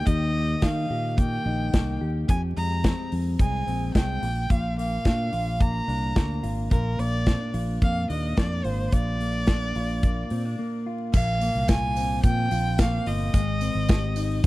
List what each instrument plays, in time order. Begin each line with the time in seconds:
Already playing: clean electric guitar A#3 D#4
0.06 fingered electric bass D#2, clean electric guitar D#3 G4, violin D#5, kick, closed hi-hat
0.34 clean electric guitar A#3
0.62 fingered electric bass D#3, clean electric guitar D#4, violin F5, kick, snare, closed hi-hat
0.90 fingered electric bass A#2, clean electric guitar G4
1.17 clean electric guitar A#3, violin G5, kick, closed hi-hat
1.46 fingered electric bass A#1, clean electric guitar D#4
1.73 fingered electric bass C2, clean electric guitar A#3, kick, snare, closed hi-hat
2.01 fingered electric bass D#2, clean electric guitar G4
2.29 fingered electric bass F2, clean electric guitar F2 G4, violin G#5, kick, closed hi-hat
2.57 fingered electric bass F2, clean electric guitar G#3, violin A#5, open hi-hat
2.84 clean electric guitar C4, kick, snare, closed hi-hat
3.12 fingered electric bass F2, open hi-hat
3.39 fingered electric bass C2, clean electric guitar G#3, violin G#5, kick, closed hi-hat
3.67 fingered electric bass A#1, clean electric guitar C4, open hi-hat
3.94 fingered electric bass C2, clean electric guitar G#3, violin G5, kick, snare, closed hi-hat
4.22 fingered electric bass A#1, clean electric guitar A#2, open hi-hat
4.50 fingered electric bass A#1, clean electric guitar A#2 F4, violin F5, kick, closed hi-hat
4.78 clean electric guitar A#3, violin F5, open hi-hat
5.05 fingered electric bass A#2, clean electric guitar D4, kick, snare, closed hi-hat
5.32 fingered electric bass A#1, clean electric guitar F4, open hi-hat
5.60 clean electric guitar A#3, violin A#5, kick, closed hi-hat
5.88 fingered electric bass C2, clean electric guitar D4, open hi-hat
6.15 fingered electric bass D2, clean electric guitar A#3, kick, snare, closed hi-hat
6.43 fingered electric bass G#1, clean electric guitar F4, open hi-hat
6.71 fingered electric bass A#1, clean electric guitar A#2 F4, violin A#4, kick, closed hi-hat
6.99 fingered electric bass A#1, clean electric guitar A#3, violin D5, open hi-hat
7.26 kick, snare, closed hi-hat
7.40 clean electric guitar D4
7.54 fingered electric bass A#1, clean electric guitar F4, open hi-hat
7.82 fingered electric bass F2, clean electric guitar A#3, violin F5, kick, closed hi-hat
8.09 fingered electric bass D#2, clean electric guitar D4, violin D#5, open hi-hat
8.37 fingered electric bass F2, clean electric guitar A#3, violin D5, kick, snare, closed hi-hat
8.64 fingered electric bass G#1, clean electric guitar F4, violin C5, open hi-hat
8.92 fingered electric bass A#1, clean electric guitar A#2 F4, violin D5, kick, closed hi-hat
9.20 clean electric guitar A#3, open hi-hat
9.47 clean electric guitar D4, kick, snare, closed hi-hat
9.75 fingered electric bass A#1, clean electric guitar F4, open hi-hat
10.03 clean electric guitar A#3, kick, closed hi-hat
10.30 fingered electric bass A#2, clean electric guitar C4, open hi-hat
10.45 clean electric guitar D4
10.59 clean electric guitar A#3
10.86 clean electric guitar F4
11.13 fingered electric bass A#1, clean electric guitar A#2, violin F5, kick, crash, tambourine
11.41 clean electric guitar A#3, open hi-hat, tambourine
11.55 fingered electric bass C2
11.68 clean electric guitar F4, violin G#5, kick, snare, closed hi-hat, tambourine
11.96 clean electric guitar C4, open hi-hat, tambourine
12.23 fingered electric bass A#2, clean electric guitar F3, violin G5, kick, closed hi-hat, tambourine
12.51 fingered electric bass A#1, clean electric guitar F4, open hi-hat, tambourine
12.78 clean electric guitar A#3, violin F5, kick, snare, closed hi-hat, tambourine
13.06 fingered electric bass G1, clean electric guitar F4, violin D#5, open hi-hat
13.34 fingered electric bass G#1, clean electric guitar G#3, kick, closed hi-hat, tambourine
13.61 clean electric guitar C4, open hi-hat, tambourine
13.75 fingered electric bass G#1
13.89 clean electric guitar G4, kick, snare, closed hi-hat, tambourine
14.16 clean electric guitar D#4, open hi-hat, tambourine
14.44 tambourine